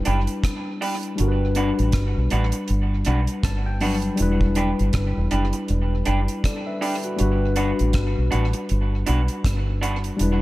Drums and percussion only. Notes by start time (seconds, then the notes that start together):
0.05 closed hi-hat
0.27 closed hi-hat
0.44 kick, cross-stick, closed hi-hat
0.82 open hi-hat
1.03 closed hi-hat
1.18 closed hi-hat
1.55 closed hi-hat
1.79 closed hi-hat
1.92 kick, cross-stick, closed hi-hat
2.30 closed hi-hat
2.52 closed hi-hat
2.68 closed hi-hat
3.05 closed hi-hat
3.27 closed hi-hat
3.43 kick, cross-stick, closed hi-hat
3.81 open hi-hat
4.02 closed hi-hat
4.17 closed hi-hat
4.41 kick
4.55 closed hi-hat
4.79 closed hi-hat
4.93 kick, cross-stick, closed hi-hat
5.31 closed hi-hat
5.53 closed hi-hat
5.68 closed hi-hat
6.05 closed hi-hat
6.28 closed hi-hat
6.44 kick, cross-stick, closed hi-hat
6.82 open hi-hat
7.03 closed hi-hat
7.19 closed hi-hat
7.56 closed hi-hat
7.79 closed hi-hat
7.93 kick, cross-stick, closed hi-hat
8.32 closed hi-hat
8.53 closed hi-hat
8.69 closed hi-hat
9.07 closed hi-hat
9.28 closed hi-hat
9.45 kick, cross-stick, closed hi-hat
9.83 closed hi-hat
10.04 closed hi-hat
10.19 closed hi-hat